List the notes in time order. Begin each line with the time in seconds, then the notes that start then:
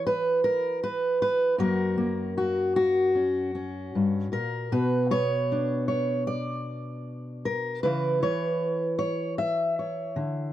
Already playing: E3 E4
0.07 B4
0.44 A#4
0.83 B4
1.22 B4
1.58 F#2 A#3 F#4 A#4
1.98 A#3
2.38 F#4
2.76 F#4
3.15 C#4
3.55 C#4
3.95 G2
4.32 A#2 A#4
4.72 B2 B4
5.11 B3 C#5
5.52 D4
5.88 C#5
6.27 D5
7.45 A#4
7.83 C#3 E3 E4 B4
8.23 E3 C#5
8.99 C#5
9.38 E5
9.79 C#5
10.16 D3